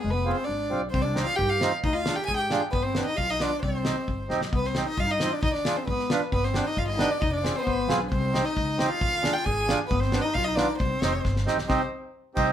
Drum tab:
CC |--------|--------|--------|--------|
SD |--------|--o---o-|--o---o-|--o---o-|
BD |--------|o---o---|o---o---|o---o---|

CC |--------|--------|--------|--------|
SD |--o---oo|-oo---o-|-oo--oo-|-oo---o-|
BD |o---o---|o---o---|o---o---|o---o---|

CC |--------|--------|--------|--------|
SD |--o---o-|--o---o-|--o---o-|-oo---o-|
BD |o---o---|o---o---|o---o---|o---o---|

CC |--------|------x-|
SD |--o-oooo|o-------|
BD |o---o---|o-----o-|